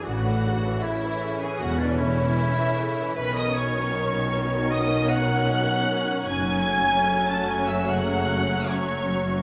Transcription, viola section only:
\new Staff \with { instrumentName = "Viola section" } { \clef bass \time 4/4 \key a \major \tempo 4 = 76 << { d'4 cis'2. | cis'1~ | cis'1 | } \\ { cis16 e16 cis16 e16 cis16 e16 cis16 e16 cis16 e16 cis16 e16 cis16 e16 cis16 e16 | dis1 | fis1 | } >> }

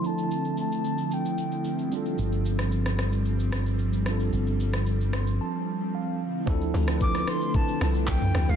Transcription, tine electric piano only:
\new Staff \with { instrumentName = "Tine electric piano" } { \time 4/4 \key d \minor \tempo 4 = 112 << { r1 | r1 | r4. c'''8 a''4 f''4 | r1 | } \\ { <f c' d' e' a'>2.~ <f c' d' e' a'>8 <g c' d' f' a'>8~ | <g c' d' f' a'>2.~ <g c' d' f' a'>8 <g c' d' f' a'>8~ | <g c' d' f' a'>2.~ <g c' d' f' a'>8 r8 | <f c' d' e' a'>8 r16 <f c' d' e' a' b'>4. r16 <f c' d' e' a'>4. | } >> }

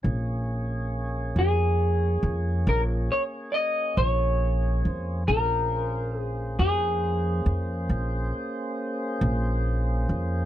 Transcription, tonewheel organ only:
\new Staff \with { instrumentName = "Tonewheel organ" } { \time 12/8 \key bes \minor \tempo 4. = 46 <bes des' aes' des''>1. | <bes des' aes' c''>1. | }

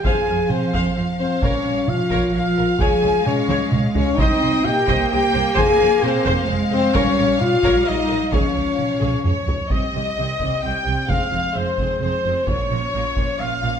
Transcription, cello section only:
\new Staff \with { instrumentName = "Cello section" } { \clef bass \time 3/4 \key c \phrygian \tempo 4 = 130 f2. | g4 f2 | f4 aes2 | c'4 bes2~ |
bes2 aes4 | g2. | f2~ f8 r8 | c8 c8 c8 c8 c8 c8 |
f,8 f,8 f,8 f,8 f,8 f,8 | bes,8 bes,8 bes,8 bes,8 bes,8 bes,8 | }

